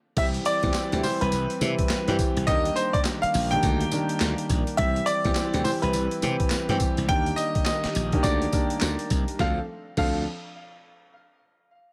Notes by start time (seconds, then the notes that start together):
0.16 C2 E3 G3 C4 E4 G4 E5, kick, closed hi-hat, crash
0.34 closed hi-hat
0.45 D5, closed hi-hat, tambourine
0.63 E2 E3 G3 C4 G4, kick, closed hi-hat
0.74 muted slap bass stroke, snare, clap, closed hi-hat, tambourine
0.92 D2 E3 G3 C4 G4, closed hi-hat
1.03 E3 G3 C4 G4 C5, open hi-hat, tambourine
1.21 C2 B4, closed hi-hat
1.32 C2, closed hi-hat, tambourine
1.50 closed hi-hat
1.61 C3 E3 G3 C4 E4, closed hi-hat, tambourine
1.79 kick, closed hi-hat
1.89 muted slap bass stroke, snare, clap, closed hi-hat, tambourine
2.08 G2 E3 G3 C4 G4, closed hi-hat
2.19 kick, closed hi-hat, tambourine
2.37 C2, closed hi-hat
2.47 D#2 D#3 A#3 D4 G4 D#5, kick, closed hi-hat
2.65 closed hi-hat
2.76 C5, closed hi-hat, tambourine
2.93 D5, muted slap bass stroke, kick, closed hi-hat
3.05 snare, clap, closed hi-hat, tambourine
3.22 F5, muted slap bass stroke, closed hi-hat
3.34 A#1, open hi-hat, tambourine
3.51 D#3 A#3 D4 G4 G5, closed hi-hat
3.63 D2, kick, closed hi-hat, tambourine
3.81 closed hi-hat
3.91 D#3 A#3 D4 G4, closed hi-hat, tambourine
4.09 closed hi-hat
4.20 D2, snare, clap, closed hi-hat, tambourine
4.38 closed hi-hat
4.49 A#1, kick, closed hi-hat, tambourine
4.67 closed hi-hat
4.77 C2 E3 G3 C4 E4 G4 E5, kick, closed hi-hat
4.96 closed hi-hat
5.06 D5, closed hi-hat, tambourine
5.25 E2 E3 G3 C4 G4, kick, closed hi-hat
5.35 muted slap bass stroke, snare, clap, closed hi-hat, tambourine
5.54 D2 E3 G3 C4 G4, closed hi-hat
5.64 E3 G3 C4 G4 C5, open hi-hat, tambourine
5.82 C2 B4, closed hi-hat
5.93 C2, closed hi-hat, tambourine
6.11 closed hi-hat
6.22 C3 E3 G3 C4 G4, closed hi-hat, tambourine
6.40 kick, closed hi-hat
6.50 muted slap bass stroke, snare, clap, closed hi-hat, tambourine
6.69 G2 E3 G3 C4 G4, closed hi-hat
6.80 kick, closed hi-hat, tambourine
6.97 C2, closed hi-hat
7.09 D#2 D#3 G3 A#3 D4 G4 G5, kick, closed hi-hat
7.26 closed hi-hat
7.36 D#5, closed hi-hat, tambourine
7.55 muted slap bass stroke, kick, closed hi-hat
7.65 D#5, snare, clap, closed hi-hat, tambourine
7.84 muted slap bass stroke, snare, closed hi-hat
7.95 A#1, closed hi-hat, tambourine
8.12 D#3 A#3 D4 G4, kick, closed hi-hat
8.23 D2 D5, kick, closed hi-hat, tambourine
8.42 closed hi-hat
8.53 D#3 A#3 D4 G4, kick, closed hi-hat, tambourine
8.70 closed hi-hat
8.81 D2, snare, clap, closed hi-hat, tambourine
8.99 closed hi-hat
9.10 C2, kick, closed hi-hat, tambourine
9.28 closed hi-hat
9.39 D2 F3 C4 D4 A4 F5, kick, snare
9.97 D2 F3 C4 D4 A4 F5, kick, crash